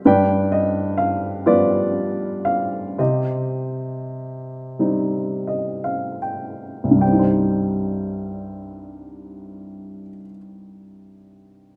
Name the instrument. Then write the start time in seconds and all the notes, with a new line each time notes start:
upright piano
0.05 G2 B4 D5 G5
0.52 D#5
0.98 F5
1.46 F3 G3 B3 F4 B4 D5
2.45 F5
2.98 C3 G4 C5 D#5
4.79 G3 C4 D#4
5.47 D#5
5.84 F5
6.22 G5
6.84 C2
6.91 G2
6.98 G3 G5
7.05 C4
7.12 D#4
7.19 C5